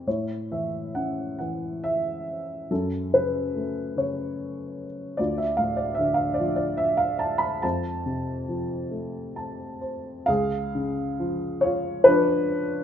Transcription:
0.07 2.67 A2 soft
0.07 1.36 E4 soft
0.07 0.53 C#5 soft
0.51 1.39 E3 soft
0.51 0.97 E5 soft
0.95 2.67 C#4 soft
0.95 1.36 F#5 soft
1.39 2.67 E3 soft
1.39 1.84 F#5 soft
1.84 2.73 E5 medium
2.70 5.15 F#2 soft
2.70 3.95 C#4 soft
2.70 3.11 A4 soft
3.13 3.95 C#3 soft
3.13 4.00 B4 medium
3.55 5.14 A3 soft
3.97 5.15 C#3 soft
3.97 4.85 C#5 medium
5.17 7.59 D2 soft
5.17 6.36 F4 soft
5.17 5.38 D5 medium
5.38 5.59 E5 medium
5.57 7.18 A2 soft
5.57 5.78 F5 medium
5.77 5.98 D5 medium
5.95 6.18 E5 medium
5.99 7.60 D3 soft
6.14 6.38 F5 medium
6.34 6.55 D5 medium
6.40 7.60 F3 soft
6.56 6.79 D5 medium
6.77 7.00 E5 medium
6.97 7.21 F5 medium
7.19 7.42 A5 medium
7.38 7.62 B5 medium
7.62 10.24 F2 soft
7.62 9.78 C5 soft
7.62 9.35 A5 medium
8.06 9.78 C3 soft
8.48 10.24 F3 soft
8.91 10.24 A3 soft
9.36 9.79 A5 soft
9.81 10.25 C5 soft
10.26 12.84 C#2 medium
10.26 11.59 G#4 medium
10.26 11.66 F5 medium
10.75 12.45 C#3 soft
11.19 12.04 F3 soft
11.61 12.04 F4 medium
11.61 12.06 C#5 medium
12.04 12.84 F3 soft
12.04 12.84 D4 medium
12.04 12.84 B4 medium

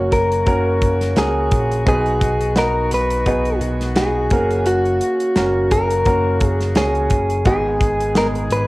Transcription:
0.00 0.43 F#1 medium
0.00 1.83 C#3 medium
0.00 0.46 A#3 medium
0.00 1.83 A#3 medium
0.00 0.46 C#4 medium
0.00 0.15 F#4 medium
0.00 0.47 F#4 medium
0.00 7.29 F#4 medium
0.00 0.47 A#4 medium
0.00 0.34 C#5 medium
0.12 1.18 A#4 medium
0.12 kick medium
0.12 closed hi-hat medium
0.32 closed hi-hat soft
0.46 1.13 F#1 loud
0.46 1.04 A#3 medium
0.46 1.04 C#4 medium
0.46 1.04 F#4 medium
0.46 1.04 A#4 medium
0.46 kick medium
0.46 closed hi-hat medium
0.81 kick medium
0.81 closed hi-hat medium
1.01 snare soft
1.01 closed hi-hat soft
1.16 1.49 C#2 medium
1.16 1.74 A#3 medium
1.16 1.74 C#4 medium
1.16 1.74 F#4 medium
1.16 1.83 G#4 medium
1.16 1.74 A#4 medium
1.16 snare medium
1.16 closed hi-hat medium
1.51 1.84 A#1 medium
1.51 kick medium
1.51 closed hi-hat medium
1.71 closed hi-hat soft
1.86 2.87 B1 medium
1.86 2.87 B2 medium
1.86 4.29 D#3 medium
1.86 2.43 B3 medium
1.86 4.29 B3 medium
1.86 2.44 D#4 medium
1.86 2.44 F#4 medium
1.86 2.53 G#4 loud
1.86 2.44 B4 medium
1.86 kick loud
1.86 closed hi-hat medium
2.06 closed hi-hat soft
2.21 kick medium
2.21 closed hi-hat medium
2.41 closed hi-hat soft
2.56 3.13 B3 medium
2.56 3.13 D#4 medium
2.56 3.14 F#4 medium
2.56 2.90 A#4 loud
2.56 3.14 D#5 medium
2.56 snare medium
2.56 closed hi-hat medium
2.91 3.57 B1 medium
2.91 3.59 B4 medium
2.91 closed hi-hat medium
3.10 closed hi-hat medium
3.26 3.83 B3 medium
3.26 3.84 D#4 medium
3.26 3.84 F#4 medium
3.26 3.84 G#4 medium
3.26 kick medium
3.26 closed hi-hat medium
3.45 closed hi-hat soft
3.61 4.27 B1 medium
3.61 closed hi-hat medium
3.81 snare soft
3.81 closed hi-hat soft
3.96 4.31 B3 medium
3.96 4.31 D#4 medium
3.96 4.31 F#4 medium
3.96 4.69 G#4 medium
3.96 4.32 G#4 medium
3.96 snare loud
3.96 closed hi-hat medium
4.31 4.97 F#1 medium
4.31 7.29 C#3 medium
4.31 5.17 A#3 medium
4.31 7.29 A#3 medium
4.31 5.17 C#4 medium
4.31 5.17 F#4 medium
4.31 5.18 A#4 medium
4.31 kick medium
4.31 closed hi-hat medium
4.51 closed hi-hat soft
4.66 5.74 F#4 medium
4.66 closed hi-hat medium
4.86 closed hi-hat soft
5.01 closed hi-hat medium
5.20 closed hi-hat soft
5.36 6.02 F#1 medium
5.36 5.93 A#3 medium
5.36 5.93 C#4 medium
5.36 5.94 F#4 medium
5.36 5.94 A#4 medium
5.36 snare medium
5.36 closed hi-hat medium
5.71 6.47 A#4 medium
5.71 kick medium
5.71 closed hi-hat medium
5.90 closed hi-hat soft
6.05 6.72 F#1 loud
6.05 6.63 A#3 medium
6.05 6.63 C#4 medium
6.05 6.63 F#4 medium
6.05 6.64 A#4 medium
6.05 kick medium
6.05 closed hi-hat medium
6.41 kick medium
6.41 closed hi-hat medium
6.47 6.77 G#4 medium
6.60 snare soft
6.60 closed hi-hat soft
6.75 7.08 C#2 medium
6.75 7.33 A#3 medium
6.75 7.33 C#4 medium
6.75 7.33 F#4 medium
6.75 7.46 G#4 medium
6.75 7.34 C#5 medium
6.75 snare loud
6.75 closed hi-hat medium
6.95 closed hi-hat soft
7.10 7.43 F#1 loud
7.10 kick medium
7.10 closed hi-hat medium
7.30 closed hi-hat soft
7.45 8.47 G#1 medium
7.45 8.47 G#2 medium
7.45 8.67 D#3 medium
7.45 8.03 G#3 medium
7.45 8.03 B3 medium
7.45 8.67 B3 medium
7.45 8.03 D#4 medium
7.45 8.67 G#4 medium
7.45 8.03 G#4 medium
7.45 8.17 G#4 medium
7.45 kick loud
7.45 closed hi-hat medium
7.81 kick medium
7.81 closed hi-hat medium
8.00 closed hi-hat soft
8.15 8.67 G#3 medium
8.15 8.67 B3 medium
8.15 8.67 D#4 medium
8.15 8.67 G#4 medium
8.15 8.27 A#4 medium
8.15 snare medium
8.15 closed hi-hat medium
8.35 closed hi-hat soft
8.50 8.67 G#1 medium
8.50 8.67 B4 medium
8.50 closed hi-hat medium

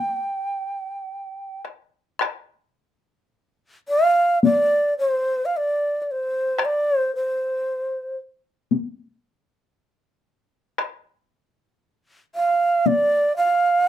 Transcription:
0.00 1.61 G5 medium
1.65 taiko rim soft
2.21 taiko rim medium
3.88 4.39 F5 medium
4.43 4.94 D5 medium
4.43 taiko high medium
4.99 5.47 C5 medium
5.45 5.58 F5 medium
5.57 6.02 D5 medium
6.02 6.13 D5 soft
6.11 6.67 C5 medium
6.58 taiko rim medium
6.65 6.97 D5 medium
6.97 7.15 C5 medium
7.16 8.17 C5 medium
8.71 taiko high medium
10.78 taiko rim soft
12.35 12.88 F5 medium
12.86 13.36 D5 loud
12.86 taiko high medium
13.37 13.88 F5 medium

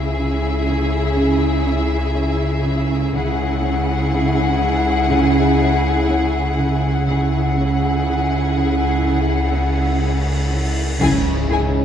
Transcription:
0.00 3.10 C#2 medium
0.00 3.10 C#2 soft
0.00 3.11 C#3 soft
0.00 3.10 E4 soft
0.00 3.11 G#4 soft
0.00 3.11 E5 soft
0.20 0.49 C#3 soft
0.70 0.99 C#3 soft
1.19 1.48 C#3 medium
1.68 1.97 C#4 soft
2.16 2.46 C#4 soft
2.66 2.95 C#3 soft
3.13 7.03 C#2 medium
3.13 7.04 C#2 medium
3.13 3.44 C#3 medium
3.13 7.04 C#3 medium
3.13 7.04 E4 medium
3.13 7.05 G#4 medium
3.13 7.04 F#5 medium
3.64 3.93 C#4 soft
4.13 4.43 C#3 soft
4.62 4.91 C#3 soft
5.11 5.41 C#3 medium
5.61 5.90 C#4 soft
6.09 6.39 C#4 soft
6.59 6.89 C#3 soft
7.07 10.77 C#2 soft
7.07 10.98 C#2 medium
7.07 10.77 C#3 soft
7.07 7.38 C#3 soft
7.07 10.77 E4 soft
7.07 10.78 G#4 soft
7.07 10.77 F#5 soft
7.07 cymbal swell soft
7.57 7.87 C#4 soft
8.06 8.36 C#3 soft
8.56 8.85 C#3 soft
9.04 9.34 C#3 soft
9.54 9.84 C#4 soft
10.02 10.32 C#4 soft
10.53 10.82 C#3 soft
11.00 11.85 C#2 medium
11.00 11.85 G#2 medium
11.00 11.85 C#3 medium
11.00 11.31 C#3 medium
11.00 11.85 G#3 medium
11.00 11.85 C#4 medium
11.00 11.85 E4 medium
11.00 11.10 E4 soft
11.00 11.09 G#4 soft
11.00 11.10 G#5 soft
11.00 impact medium
11.49 11.79 C#3 soft
11.49 11.57 E4 soft
11.49 11.58 G#4 soft
11.49 11.60 G#5 soft

